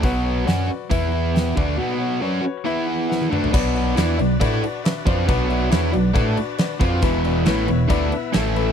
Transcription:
<<
  \new Staff \with { instrumentName = "Grand piano" } { \time 4/4 \key b \minor \tempo 4 = 137 <fis' b' cis''>8 <fis' b' cis''>8 <fis' b' d''>8 <fis' b' d''>8 <e' b' e''>8 <e' b' e''>8 <e' b' g''>8 <fis' b' d''>8~ | <fis' b' d''>8 <fis' b' cis''>8 <fis' b' d''>8 <fis' b' cis''>8 <e' b' e''>8 <e' b' fis''>8 <e' b' fis''>8 <fis' b' d''>8 | <d' fis' b' d''>8 <d' fis' b' d''>8 <d' fis' b' d''>8 <d' fis' b' d''>8 <d' fis' b' d''>8 <d' fis' b' d''>8 <d' fis' b' e''>8 <d' fis' b' d''>8 | <d' fis' b' d''>8 <d' fis' b' e''>8 <d' fis' b' cis''>8 <d' fis' b' d''>8 <d' fis' b' d''>8 <d' fis' b' d''>8 <d' fis' b' d''>8 <d' fis' b' d''>8 |
<b e' b' e''>8 <b e' b' d''>8 <b e' b' cis''>8 <b e' b' cis''>8 <b e' b' d''>8 <b e' b' e''>8 <a e' a' e''>8 <a e' a' b'>8 | }
  \new Staff \with { instrumentName = "Tonewheel organ" } { \time 4/4 \key b \minor r1 | r1 | <d' fis' b' d''>1~ | <d' fis' b' d''>1 |
<b e' b' e''>2. <a e' a' e''>4 | }
  \new Staff \with { instrumentName = "Overdriven electric guitar" } { \time 4/4 \key b \minor <b, fis b>4 <fis cis' fis'>8 r8 <e b e'>4. <d a d'>8 | <b, fis b>4 <fis cis' fis'>8 r8 <e b e'>4. <d a d'>8 | <b, fis b>4 <e b e'>8 <b, fis>8 <a e' a'>8 r4 <eis c' eis'>8 | <b, fis b>4 <e b e'>8 <b, fis>8 <a e' a'>8 r4 <eis c' eis'>8 |
<e, b, e>4 <a, e a>8 <e, b,>8 <d a d'>8 r8 <a, e a>4 | }
  \new Staff \with { instrumentName = "Fingered electric bass" } { \clef bass \time 4/4 \key b \minor b,,4 fis,8 r8 e,4. d,8 | r1 | b,,4 e,8 b,,8 a,8 r4 eis,8 | b,,4 e,8 b,,8 a,8 r4 eis,8 |
e,,4 a,,8 e,,8 d,8 r8 a,,4 | }
  \new DrumStaff \with { instrumentName = "Drums" } \drummode { \time 4/4 <hho bd>4 <hho sn>4 <hho bd>4 <hho sn>8 bd8 | r4 r4 r4 sn16 tommh16 toml16 tomfh16 | <cymc bd>8 cymc8 <cymc sn>8 cymc8 <cymc bd>8 cymc8 <cymc sn>8 <cymc bd>8 | <cymc bd>8 cymc8 <cymc sn>8 cymc8 <cymc bd>8 cymc8 <cymc sn>8 <cymc bd>8 |
<cymc bd>8 cymc8 <cymc sn>8 cymc8 <cymc bd>8 cymc8 <cymc sn>8 cymc8 | }
>>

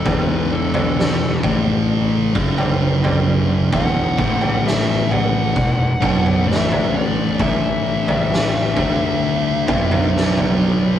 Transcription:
<<
  \new Staff \with { instrumentName = "Lead electric guitar" } { \time 4/4 \key a \mixolydian \tempo 4 = 66 b'8 a'4 r2 r8 | fis''4 e''8 fis''4. e''8 d''8 | e''2.~ e''8 r8 | }
  \new Staff \with { instrumentName = "Distorted electric guitar" } { \clef bass \time 4/4 \key a \mixolydian <e, b, e>4. <a, e a>4 <fis, cis fis>4. | <e, b, e>8 <a, e a>4. <e, b,>8 <b, fis b>8 <a, e a>4~ | <a, e a>4. <d a d'>4 <b, fis b>4. | }
  \new Staff \with { instrumentName = "Distorted electric guitar" } { \clef bass \time 4/4 \key a \mixolydian <e, b, e>4. <a, e a>4 <fis, cis fis>4. | <e, b, e>8 <a, e a>4. <e, b,>8 <b, fis b>8 <a, e a>4~ | <a, e a>4. <d a d'>4 <b, fis b>4. | }
  \new Staff \with { instrumentName = "Fingered electric bass" } { \clef bass \time 4/4 \key a \mixolydian e,,4. a,,4 fis,,4. | e,,8 a,,4. e,,8 b,,8 a,,4~ | a,,4. d,4 b,,4. | }
  \new DrumStaff \with { instrumentName = "Drums" } \drummode { \time 4/4 <bd tomfh>8. tomfh16 sn8 <bd tomfh>8 r8 bd16 tomfh16 r16 tomfh8. | <bd tomfh>8 bd16 tomfh16 sn8 tomfh8 bd8 <bd toml>16 tomfh16 sn16 tomfh8. | <bd tomfh>8. tomfh16 sn8 <bd tomfh>8 r8 <bd toml>16 tomfh16 sn16 tomfh8. | }
>>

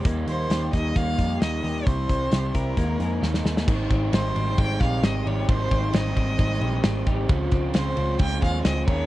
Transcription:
<<
  \new Staff \with { instrumentName = "Violin" } { \time 4/4 \key aes \major \tempo 4 = 133 r8 c''4 ees''8 f''4 ees''4 | c''4. bes'2 r8 | r4 c''4 g''8 f''8 ees''8 des''8 | c''4 ees''2~ ees''8 r8 |
r4 c''4 g''8 f''8 ees''8 des''8 | }
  \new Staff \with { instrumentName = "Clean electric guitar" } { \time 4/4 \key aes \major bes8 bes8 g'8 ees'8 bes8 g'8 ees'8 g'8 | e8 c'8 g'8 e'8 bes8 aes'8 ees'8 aes'8 | ees8 c'8 aes8 c'8 aes8 g'8 c'8 g'8 | ees8 c'8 aes8 c'8 aes8 g'8 c'8 g'8 |
f8 c'8 aes8 c'8 aes8 aes'8 c'8 ees8 | }
  \new Staff \with { instrumentName = "Overdriven electric guitar" } { \time 4/4 \key aes \major <ees g bes ees'>4 <ees g bes ees'>8 <g bes ees'>8 <ees g bes ees'>8 <g bes ees'>8 <ees g bes ees'>4 | <c g c' e'>4 <c g c' e'>8 <g c' e'>8 <ees aes bes ees'>8 <aes bes ees'>8 <ees aes bes ees'>4 | <aes, ees g c' ees'>4 <ees g c' ees'>4 <aes, ees g c' ees'>8 <g c' ees'>4 <g c' ees'>8 | <aes, ees g c' ees'>4 <ees g c' ees'>4 <aes, ees g c' ees'>8 <g c' ees'>4 <g c' ees'>8 |
<des aes c' f'>4 <des aes c' f'>8 <aes c' f'>8 <des aes c' f'>8 <aes c' f'>4 <des' aes' bes'>8 | }
  \new Staff \with { instrumentName = "Picked electric bass" } { \clef bass \time 4/4 \key aes \major ees,8 ees,8 ees,8 ees,8 ees,8 f,8 ees,8 ees,8 | c,8 c,8 c,8 c,8 ees,8 f,8 ees,8 ees,8 | aes,,8 aes,,8 aes,,8 aes,,8 aes,,8 bes,,8 aes,,8 aes,,8 | aes,,8 aes,,8 aes,,8 aes,,8 aes,,8 bes,,8 aes,,8 aes,,8 |
des,8 des,8 des,8 des,8 des,8 ees,8 des,8 ees,8 | }
  \new DrumStaff \with { instrumentName = "Drums" } \drummode { \time 4/4 <hh bd>8 hh8 <hh sn>8 <hh bd>8 <hh bd>8 <hh bd>8 <hh sn>8 hho8 | <hh bd>8 <hh bd>8 <hh sn>8 <hh bd>8 <hh bd>8 hh8 sn16 sn16 sn16 sn16 | <cymc bd>8 <bd cymr>8 <cymr sn>8 cymr8 <bd cymr>8 <bd cymr sn>8 <cymr sn>8 cymr8 | <bd cymr>8 <bd cymr>8 <cymr sn>8 <bd cymr>8 <bd cymr>8 cymr8 <cymr sn>8 <bd cymr>8 |
<bd cymr>8 <bd cymr>8 <cymr sn>8 cymr8 <bd cymr>8 <bd cymr>8 <cymr sn>8 <cymc bd>8 | }
>>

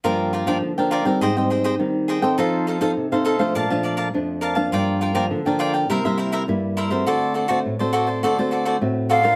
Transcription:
<<
  \new Staff \with { instrumentName = "Flute" } { \time 4/4 \key g \minor \tempo 4 = 103 r1 | r1 | r1 | r2. r8 f''8 | }
  \new Staff \with { instrumentName = "Cavaquinho" } { \time 4/4 \key g \minor <f' bes' d'' g''>8 <f' bes' d'' g''>16 <f' bes' d'' g''>16 r16 <bes' d'' g''>16 <f' bes' d'' g''>16 <bes' d'' g''>16 <aes' c'' ees'' g''>16 <c'' ees'' g''>16 <aes' c'' ees'' g''>16 <aes' c'' ees'' g''>16 r8 <aes' c'' ees'' g''>16 <c'' ees'' g''>16 | <ees' a' c'' f''>8 <ees' a' c'' f''>16 <ees' a' c'' f''>16 r16 <a' c'' f''>16 <ees' a' c'' f''>16 <a' c'' f''>16 <bes' d'' f'' a''>16 <d'' f'' a''>16 <bes' d'' f'' a''>16 <bes' d'' f'' a''>16 r8 <bes' d'' f'' a''>16 <d'' f'' a''>16 | <f' bes' d'' g''>8 <f' bes' d'' g''>16 <f' bes' d'' g''>16 r16 <bes' d'' g''>16 <f' bes' d'' g''>16 <bes' d'' g''>16 <e' bes' c'' e''>16 <bes' c'' e''>16 <e' bes' c'' e''>16 <e' bes' c'' e''>16 r8 <e' bes' c'' e''>16 <bes' c'' e''>16 | <fis' a' c'' d''>8 <fis' a' c'' d''>16 <fis' a' c'' d''>16 r16 <a' c'' d''>16 <fis' a' c'' d''>16 <a' c'' d''>16 <fis' a' c'' d''>16 <a' c'' d''>16 <fis' a' c'' d''>16 <fis' a' c'' d''>16 r8 <fis' a' c'' d''>16 <a' c'' d''>16 | }
  \new Staff \with { instrumentName = "Nylon-string guitar" } { \time 4/4 \key g \minor << { <f bes d'>8. <f bes d'>8 <f bes d'>8 <g c' ees'>8 <g c' ees'>8. <g c' ees'>8. <c' ees' a'>16~ | <c' ees' a'>8. <c' ees' a'>8 <c' ees' a'>8 <f a d'>8 <f a d'>8. <f a d'>8. <f bes d'>16~ | <f bes d'>8. <f bes d'>8 <f bes d'>8. <g bes e'>16 <g bes e'>8. <g bes e'>8. <a c' fis'>16~ | <a c' fis'>8. <a c' fis'>8 <a c' fis'>4 <a c' fis'>8. <a c' fis'>8. <d' f' bes'>16 | } \\ { g,4 d4 aes,4 ees4 | f4 c4 bes,4 f,4 | g,4 d4 c4 g,4 | d4 a,4 d4 a,4 | } >> }
>>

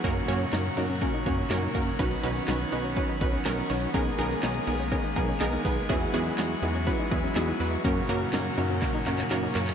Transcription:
<<
  \new Staff \with { instrumentName = "Synth pluck" } { \time 4/4 \key fis \mixolydian \tempo 4 = 123 <ais cis' fis' ais'>8 <ais cis' fis' cis''>8 <ais cis' fis' ais'>8 <ais cis' fis' ais'>8 <ais cis' fis' ais'>8 <ais cis' fis' cis''>8 <ais cis' fis' ais'>8 <ais cis' fis' ais'>8 | <cis' dis' fis' b'>8 <cis' dis' fis' b'>8 <cis' dis' fis' b'>8 <cis' dis' fis' b'>8 <cis' dis' fis' b'>8 <cis' dis' fis' b'>8 <cis' dis' fis' ais'>8 <cis' dis' fis' cis''>8 | <b dis' gis' ais'>8 <b dis' gis' ais'>8 <b dis' gis' cis''>8 <b dis' gis' ais'>8 <b dis' gis' ais'>8 <b dis' gis' ais'>8 <b dis' gis' ais'>8 <b dis' gis' b'>8 | <b e' fis' gis'>8 <b e' fis' gis'>8 <b e' fis' gis'>8 <b e' fis' gis'>8 <b e' fis' b'>8 <b e' fis' gis'>8 <b e' fis' gis'>8 <b e' fis' b'>8 |
<ais cis' fis' ais'>8 <ais cis' fis' ais'>8 <ais cis' fis' ais'>8 <ais cis' fis' ais'>8 <ais cis' fis' ais'>8 <ais cis' fis' ais'>8 <ais cis' fis' ais'>8 <ais cis' fis' ais'>8 | }
  \new Staff \with { instrumentName = "Synth arpeggio sound" } { \time 4/4 \key fis \mixolydian cis'8 cis'8 dis'8 dis'16 cis'16 cis'16 dis'8 cis'16 dis'16 dis'8 r16 | cis'8 cis'8 dis'8 dis'16 cis'16 cis'16 dis'8 cis'16 dis'16 dis'8 r16 | cis'8 cis'8 dis'8 dis'16 cis'16 cis'16 dis'8 cis'16 dis'16 dis'8 r16 | cis'8 cis'8 dis'8 dis'16 cis'16 cis'16 dis'8 cis'16 dis'16 dis'8 r16 |
cis'8 cis'8 dis'8 dis'16 cis'16 cis'16 dis'8 cis'16 dis'16 dis'8 r16 | }
  \new Staff \with { instrumentName = "Pipe organ" } { \time 4/4 \key fis \mixolydian <cis fis cis' fis'>1~ | <cis fis cis' fis'>1 | <gis gis'>1 | <fis fis'>1 |
<cis cis' fis'>1 | }
  \new Staff \with { instrumentName = "Pipe organ" } { \clef bass \time 4/4 \key fis \mixolydian << { r1 | b1 | ais1 | r1 |
r1 | } \\ { ais,1 | dis1~ | dis1 | e1 |
ais,1 | } >> }
  \new Staff \with { instrumentName = "Analog synth bass" } { \clef bass \time 4/4 \key fis \mixolydian fis,8 fis,8 fis,8 fis,8. r16 fis,8 fis,8 fis,8 | b,,8 b,,8 b,,8 b,,8. r16 b,,8 b,,8 b,,8 | b,,8 b,,8 b,,8 b,,8. r16 b,,8 b,,8 b,,8 | e,8 e,8 e,8 e,8. r16 e,8 e,8 e,8 |
fis,8 fis,8 fis,8 fis,8. r16 fis,8 fis,8 fis,8 | }
  \new DrumStaff \with { instrumentName = "Drums" } \drummode { \time 4/4 <hh bd>8 hh8 <hc hh sn>8 hh8 <hh bd>8 <hh bd>8 <hc hh sn>8 <hho bd>8 | <hh bd>8 hh8 <hc hh sn>8 hh8 <hh bd>8 <hh bd>8 <hc hh sn>8 hho8 | <hh bd>8 hh8 <hc hh sn>8 hh8 <hh bd>8 <hh bd>8 <hc hh sn>8 <hho bd>8 | <hh bd>8 hh8 <hc hh sn>8 hh8 <hh bd>8 <hh bd>8 <hc hh sn>8 hho8 |
<hh bd>8 hh8 <hc hh sn>8 hh8 <hc hh bd>8 <hc hh>16 hc16 <hc hh>8 <hc hho>16 hc16 | }
>>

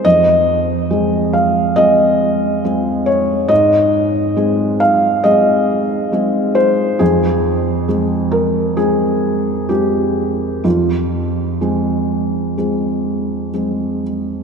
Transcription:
\new Staff \with { instrumentName = "Felt piano" } { \time 4/4 \key f \minor \tempo 4 = 68 << { ees''4. f''8 ees''4. des''8 | ees''4. f''8 ees''4. c''8 | aes'4. bes'8 aes'4 g'4 | f'2.~ f'8 r8 | } \\ { f,4 <aes c' aes'>4 <aes c' aes'>4 <aes c' aes'>4 | aes,4 <aes c' aes'>4 <aes c' aes'>4 <aes c' aes'>4 | f,4 <aes c' aes'>4 <aes c'>4 <aes c' aes'>4 | f,4 <aes c' aes'>4 <aes c' aes'>4 <aes c' aes'>4 | } >> }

